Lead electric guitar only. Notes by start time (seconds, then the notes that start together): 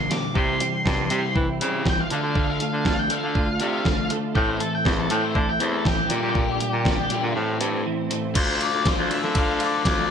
Already playing: C6
0.11 D6
0.38 C6
1.89 G5
2.00 F5
2.50 F5
2.99 G5
3.12 F5
3.61 F5
4.36 G5
4.49 C5
4.60 A4
4.75 G5
4.88 C5
4.99 A4
5.12 G5
5.24 C5
5.38 A4
5.49 G5
5.62 C5
5.73 A4
5.86 G4
8.36 C5
8.62 D5
8.88 C5
9.11 E5
9.38 F5
9.63 D5
9.88 D5